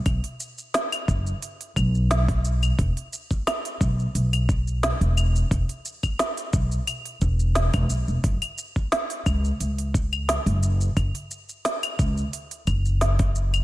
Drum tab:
HH |oo--oo--oo--oo--|oo--oo--oo--oo--|oo--oo--oo--oo--|oo--oo--oo--oo--|
SH |xxxxxxxxxxxxxxxx|xxxxxxxxxxxxxxxx|xxxxxxxxxxxxxxxx|xxxxxxxxxxxxxxxx|
CL |x----x----x----x|----x----x----x-|---x----x----x--|-x----x----x----|
SD |----o-------o---|----o-------o---|----o-------o---|----o-------o---|
BD |o-----o---o--o--|o--o--o---o-----|o--o--o---o--o--|o--o--o---o-----|

HH |oo--oo--oo--oo--|
SH |xxxxxxxxxxxxxxxx|
CL |x----x----x----x|
SD |----o-------o---|
BD |o-----o---o--o--|